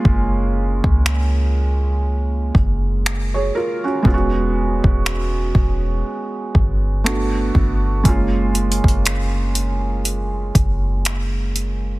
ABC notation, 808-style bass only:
X:1
M:4/4
L:1/16
Q:"Swing 16ths" 1/4=60
K:F#
V:1 name="808-style bass" clef=bass
F,,,3 C,,6- C,, F,,,4 z2 | =E,,,3 E,,,3 E,,,2 z2 =G,,,4 G,,,2 | F,,,3 F,,,6- F,,, F,,,6 |]